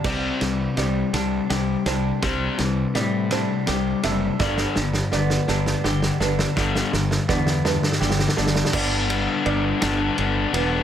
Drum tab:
CC |x-----------------------|------------------------|------------------------|------------------------|
RD |----x---x---x---x---x---|x---x---x---x---x---x---|------------------------|------------------------|
SD |o---o---o---o---o---o---|o---o---o---o---o---o---|o-o-o-o-o-o-o-o-o-o-o-o-|o-o-o-o-o-o-o-oooooooooo|
BD |o-----------------------|o-----------------------|o-----------------------|o-------o---------------|

CC |x-----------------------|
RD |----x---x---x---x---x---|
SD |------------o-----------|
BD |o-----------------------|